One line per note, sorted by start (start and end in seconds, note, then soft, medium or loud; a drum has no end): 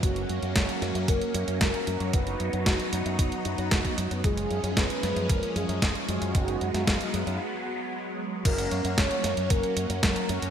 0.03 0.23 F#1 medium
0.03 4.20 F#3 medium
0.03 0.39 F#3 medium
0.03 0.39 A#3 medium
0.03 2.12 A#3 medium
0.03 2.11 C#4 medium
0.03 0.39 C#4 medium
0.03 0.39 F#4 medium
0.03 0.52 F#4 medium
0.03 kick loud
0.03 closed hi-hat medium
0.16 closed hi-hat soft
0.29 0.40 F#2 medium
0.29 closed hi-hat soft
0.42 0.53 F#2 medium
0.42 1.84 F#3 medium
0.42 1.84 A#3 medium
0.42 1.84 C#4 medium
0.42 1.84 F#4 medium
0.42 closed hi-hat soft
0.56 0.66 F#1 medium
0.56 1.10 F#4 medium
0.56 kick loud
0.56 snare loud
0.56 closed hi-hat medium
0.69 closed hi-hat soft
0.82 0.92 F#2 medium
0.82 snare soft
0.82 closed hi-hat medium
0.95 1.05 F#2 medium
0.95 closed hi-hat soft
1.08 1.18 F#1 medium
1.08 1.61 A#4 loud
1.08 kick loud
1.08 closed hi-hat medium
1.21 closed hi-hat soft
1.34 1.45 F#2 medium
1.34 closed hi-hat medium
1.48 1.58 F#2 medium
1.48 closed hi-hat soft
1.61 1.71 F#1 loud
1.61 2.15 A#4 loud
1.61 kick loud
1.61 snare loud
1.61 closed hi-hat medium
1.74 closed hi-hat soft
1.87 1.98 F#2 medium
1.87 2.10 F#3 medium
1.87 2.10 A#3 medium
1.87 2.10 C#4 medium
1.87 2.10 F#4 loud
1.87 closed hi-hat medium
2.00 2.11 F#2 loud
2.00 closed hi-hat soft
2.13 2.34 F#1 loud
2.13 2.50 F#3 medium
2.13 2.50 B3 medium
2.13 4.22 B3 medium
2.13 2.50 D#4 medium
2.13 4.22 D#4 medium
2.13 2.50 F#4 medium
2.13 2.68 B4 loud
2.13 kick loud
2.13 closed hi-hat medium
2.27 closed hi-hat soft
2.40 2.50 F#2 medium
2.40 closed hi-hat soft
2.53 2.63 F#2 medium
2.53 4.21 F#3 medium
2.53 4.21 B3 medium
2.53 4.21 D#4 medium
2.53 4.21 F#4 medium
2.53 closed hi-hat soft
2.66 2.76 F#1 medium
2.66 3.18 F#4 loud
2.66 kick loud
2.66 snare loud
2.66 closed hi-hat medium
2.80 closed hi-hat soft
2.93 3.03 F#2 medium
2.93 closed hi-hat medium
3.06 3.16 F#2 loud
3.06 closed hi-hat soft
3.19 3.29 F#1 medium
3.19 3.94 F#4 medium
3.19 kick loud
3.19 closed hi-hat medium
3.32 closed hi-hat soft
3.45 3.55 F#2 medium
3.45 closed hi-hat medium
3.58 3.69 F#2 medium
3.58 closed hi-hat soft
3.71 3.82 F#1 loud
3.71 kick loud
3.71 snare loud
3.71 closed hi-hat medium
3.85 kick medium
3.85 closed hi-hat soft
3.98 4.08 F#2 medium
3.98 closed hi-hat medium
4.11 4.21 F#2 loud
4.11 closed hi-hat soft
4.24 4.45 F#1 medium
4.24 6.33 F3 medium
4.24 4.60 G#3 medium
4.24 8.41 G#3 medium
4.24 6.33 C#4 medium
4.24 4.60 C#4 medium
4.24 4.60 F4 medium
4.24 4.60 G#4 medium
4.24 4.79 G#4 loud
4.24 kick loud
4.24 closed hi-hat medium
4.37 closed hi-hat soft
4.50 4.61 F#2 medium
4.50 closed hi-hat soft
4.63 4.74 F#2 medium
4.63 6.05 G#3 medium
4.63 6.05 C#4 medium
4.63 6.05 F4 medium
4.63 6.05 G#4 medium
4.63 closed hi-hat soft
4.77 4.87 F#1 medium
4.77 5.31 B4 loud
4.77 kick loud
4.77 snare loud
4.77 closed hi-hat medium
4.90 closed hi-hat soft
5.03 5.13 F#2 medium
5.03 snare soft
5.03 closed hi-hat medium
5.16 5.26 F#2 loud
5.16 closed hi-hat soft
5.29 5.40 F#1 medium
5.29 5.55 A#4 loud
5.29 kick loud
5.29 closed hi-hat medium
5.43 closed hi-hat soft
5.56 5.66 F#2 medium
5.56 5.80 G#4 loud
5.56 closed hi-hat medium
5.69 5.79 F#2 medium
5.69 closed hi-hat soft
5.82 5.92 F#1 loud
5.82 5.94 G#4 loud
5.82 kick loud
5.82 snare loud
5.82 closed hi-hat medium
5.95 closed hi-hat soft
6.08 6.19 F#2 medium
6.08 6.32 G#3 medium
6.08 6.32 C#4 medium
6.08 6.32 F4 medium
6.08 7.36 F#4 medium
6.08 6.32 G#4 loud
6.08 closed hi-hat medium
6.22 6.32 F#2 loud
6.22 closed hi-hat soft
6.35 6.55 F#1 loud
6.35 8.43 F#3 medium
6.35 6.71 G#3 medium
6.35 6.71 B3 medium
6.35 8.43 B3 medium
6.35 6.71 D#4 medium
6.35 6.71 F#4 medium
6.35 kick loud
6.35 closed hi-hat medium
6.48 closed hi-hat soft
6.61 6.71 F#2 medium
6.61 closed hi-hat soft
6.74 6.84 F#2 medium
6.74 7.40 G#3 medium
6.74 7.40 B3 medium
6.74 7.40 D#4 medium
6.74 7.40 F5 medium
6.74 snare soft
6.74 closed hi-hat soft
6.87 6.97 F#1 medium
6.87 kick loud
6.87 snare loud
6.87 closed hi-hat medium
7.01 closed hi-hat soft
7.14 7.24 F#2 loud
7.14 closed hi-hat medium
7.27 7.37 F#2 loud
7.27 closed hi-hat soft
8.45 8.66 F#1 medium
8.45 10.50 F#3 medium
8.45 8.81 F#3 medium
8.45 10.50 A#3 medium
8.45 8.81 A#3 medium
8.45 10.50 C#4 medium
8.45 8.82 C#4 medium
8.45 8.82 F#4 medium
8.45 8.99 A#4 loud
8.45 kick loud
8.45 closed hi-hat loud
8.45 crash loud
8.58 closed hi-hat soft
8.71 8.82 F#2 medium
8.71 closed hi-hat soft
8.85 8.95 F#2 loud
8.85 10.26 F#3 medium
8.85 10.26 A#3 medium
8.85 10.26 C#4 medium
8.85 10.26 F#4 medium
8.85 closed hi-hat soft
8.97 9.08 F#1 medium
8.97 9.52 C#5 loud
8.97 kick loud
8.97 snare loud
8.97 closed hi-hat medium
9.11 closed hi-hat soft
9.24 9.34 F#2 medium
9.24 snare soft
9.24 closed hi-hat medium
9.37 9.47 F#2 loud
9.37 closed hi-hat soft
9.50 9.61 F#1 medium
9.50 10.02 A#4 loud
9.50 kick loud
9.50 closed hi-hat loud
9.63 closed hi-hat soft
9.76 9.87 F#2 medium
9.76 closed hi-hat medium
9.90 10.00 F#2 loud
9.90 closed hi-hat soft
10.03 10.13 F#1 loud
10.03 10.50 A#4 loud
10.03 kick loud
10.03 snare loud
10.03 closed hi-hat medium
10.16 closed hi-hat soft
10.29 10.40 F#2 loud
10.29 10.50 F#3 medium
10.29 10.50 A#3 medium
10.29 10.50 C#4 medium
10.29 10.50 F#4 loud
10.29 closed hi-hat medium
10.42 10.50 F#2 medium
10.42 closed hi-hat soft